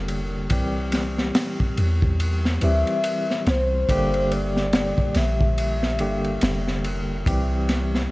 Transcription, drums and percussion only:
0.08 ride medium
0.50 kick loud
0.50 ride medium
0.92 snare soft
0.92 ride medium
1.18 snare soft
1.35 snare loud
1.35 ride medium
1.60 kick medium
1.77 ride medium
2.02 kick medium
2.20 ride medium
2.45 snare soft
2.61 ride medium
2.87 ride soft
3.04 ride medium
3.31 snare soft
3.46 snare loud
3.46 ride medium
3.89 kick medium
3.89 ride medium
4.14 ride soft
4.31 ride medium
4.57 snare soft
4.73 snare loud
4.73 ride medium
4.98 kick loud
5.14 snare soft
5.14 ride medium
5.41 kick loud
5.58 ride medium
5.83 snare soft
5.99 ride medium
6.24 ride soft
6.41 snare loud
6.41 ride medium
6.68 snare soft
6.84 ride medium
7.26 kick loud
7.26 ride medium
7.69 snare soft
7.69 ride medium
7.95 snare soft

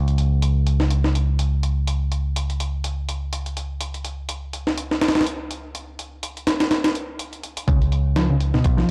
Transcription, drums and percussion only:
0.08 closed hi-hat soft
0.18 closed hi-hat medium
0.42 closed hi-hat medium
0.67 closed hi-hat medium
0.80 snare soft
0.90 closed hi-hat medium
1.04 snare soft
1.15 closed hi-hat medium
1.39 closed hi-hat medium
1.63 closed hi-hat medium
1.87 closed hi-hat medium
2.12 closed hi-hat medium
2.36 closed hi-hat medium
2.50 closed hi-hat soft
2.60 closed hi-hat medium
2.84 closed hi-hat medium
3.09 closed hi-hat medium
3.33 closed hi-hat medium
3.46 closed hi-hat soft
3.57 closed hi-hat medium
3.81 closed hi-hat medium
3.94 closed hi-hat soft
4.05 closed hi-hat medium
4.29 closed hi-hat medium
4.53 closed hi-hat medium
4.67 snare soft
4.78 closed hi-hat medium
4.91 snare soft
5.01 snare medium
5.01 closed hi-hat medium
5.08 snare medium
5.08 closed hi-hat medium
5.15 snare medium
5.15 closed hi-hat medium
5.21 snare medium
5.21 closed hi-hat medium
5.26 closed hi-hat medium
5.51 closed hi-hat medium
5.75 closed hi-hat medium
5.99 closed hi-hat medium
6.23 closed hi-hat medium
6.37 closed hi-hat soft
6.47 snare medium
6.47 closed hi-hat medium
6.60 snare medium
6.60 closed hi-hat medium
6.71 snare medium
6.71 closed hi-hat medium
6.84 snare loud
6.84 closed hi-hat medium
6.95 closed hi-hat medium
7.19 closed hi-hat medium
7.33 closed hi-hat soft
7.43 closed hi-hat medium
7.57 closed hi-hat medium
7.68 kick loud
7.68 closed hi-hat medium
7.82 closed hi-hat soft
7.92 closed hi-hat medium
8.16 snare loud
8.16 closed hi-hat medium
8.40 closed hi-hat medium
8.54 snare soft
8.64 kick loud
8.64 closed hi-hat medium
8.78 snare soft

